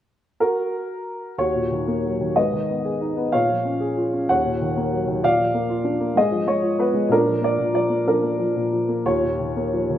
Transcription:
0.40 1.35 F#4 soft
0.40 1.34 A#4 medium
1.38 2.33 D#2 soft
1.38 2.33 F#4 soft
1.38 2.39 C#5 medium
1.55 2.34 A#2 soft
1.71 2.19 D#3 soft
1.88 2.35 A#3 soft
2.05 2.36 F#3 soft
2.20 2.36 D#3 soft
2.36 3.31 G#2 soft
2.36 3.29 B4 soft
2.36 3.36 D#5 medium
2.53 3.31 D#3 soft
2.69 3.15 B3 soft
2.85 3.32 G#4 soft
3.01 3.32 D#4 soft
3.17 3.33 B3 soft
3.32 4.27 A#2 soft
3.32 4.26 C#5 medium
3.32 4.32 F5 medium
3.49 4.27 F3 soft
3.65 4.11 C#4 soft
3.80 4.27 G#4 soft
3.97 4.28 F4 soft
4.13 4.29 C#4 soft
4.29 5.21 D#2 soft
4.29 5.20 C#5 medium
4.29 5.26 F#5 medium
4.45 5.21 A#2 soft
4.62 5.06 D#3 soft
4.77 5.22 A#3 soft
4.92 5.23 F#3 soft
5.08 5.23 D#3 soft
5.23 6.14 A#2 soft
5.23 6.13 D5 medium
5.23 6.20 F5 medium
5.39 6.15 F3 soft
5.54 5.99 A#3 soft
5.69 6.15 F4 soft
5.84 6.16 D4 soft
6.00 6.16 A#3 soft
6.16 7.07 G#2 soft
6.16 7.07 G#4 medium
6.16 6.50 D#5 medium
6.31 7.08 F3 soft
6.47 6.92 G#3 soft
6.47 6.80 C#5 medium
6.62 7.09 F4 soft
6.78 7.09 B3 soft
6.78 7.12 B4 medium
6.94 7.10 G#3 soft
7.09 7.57 A#2 medium
7.09 8.03 D4 medium
7.09 7.43 A#4 medium
7.26 7.72 F3 soft
7.41 7.88 A#3 soft
7.41 7.73 D5 medium
7.58 8.54 A#2 soft
7.73 8.05 F3 soft
7.73 8.08 D5 medium
7.89 8.21 A#3 soft
8.06 8.37 F3 soft
8.06 9.02 D4 soft
8.06 9.09 A#4 medium
8.23 8.87 A#3 soft
8.39 8.71 F3 soft
8.56 9.04 A#2 soft
8.73 9.05 F3 soft
8.89 9.05 A#3 soft
9.06 9.98 D#2 soft
9.06 9.98 F4 soft
9.06 9.98 C#5 medium
9.22 9.98 A#2 soft
9.39 9.88 D#3 soft
9.56 9.98 A#3 soft
9.73 9.98 F3 soft
9.90 9.98 D#3 soft

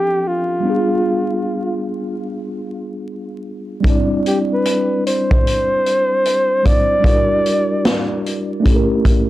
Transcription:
0.00 0.58 F3 medium
0.00 0.60 C4 medium
0.00 0.61 D4 medium
0.00 0.29 G4 loud
0.00 0.63 A4 medium
0.00 0.62 E5 medium
0.27 1.86 F4 medium
0.60 3.78 G3 soft
0.60 3.79 B3 soft
0.65 3.80 D4 soft
0.65 3.82 F4 medium
0.70 3.83 G#4 medium
3.81 6.58 G3 medium
3.81 6.59 C4 medium
3.81 kick medium
3.85 6.61 D4 medium
3.85 6.62 E4 medium
3.85 closed hi-hat medium
3.90 6.63 D5 medium
4.26 4.38 G4 medium
4.26 closed hi-hat medium
4.53 5.02 B4 medium
4.65 closed hi-hat medium
5.07 6.68 C5 medium
5.07 closed hi-hat medium
5.31 kick medium
5.47 closed hi-hat medium
5.86 closed hi-hat medium
6.25 closed hi-hat medium
6.63 6.99 G3 soft
6.63 7.04 C4 soft
6.63 7.01 D4 soft
6.63 7.03 E4 soft
6.63 8.25 D5 loud
6.63 kick medium
6.63 closed hi-hat medium
6.67 7.06 C5 medium
7.00 8.59 G3 medium
7.00 8.60 D4 medium
7.04 8.61 E4 medium
7.04 8.63 F#4 medium
7.04 kick medium
7.04 closed hi-hat medium
7.09 8.64 A#4 medium
7.46 closed hi-hat medium
7.85 snare loud
7.85 closed hi-hat medium
8.26 closed hi-hat medium
8.60 9.30 A3 medium
8.60 9.30 C#4 medium
8.65 9.30 E4 medium
8.65 9.30 G4 medium
8.65 kick medium
8.65 closed hi-hat medium
8.70 8.76 A4 medium
8.76 9.30 A#4 medium
9.05 kick medium
9.05 closed hi-hat medium

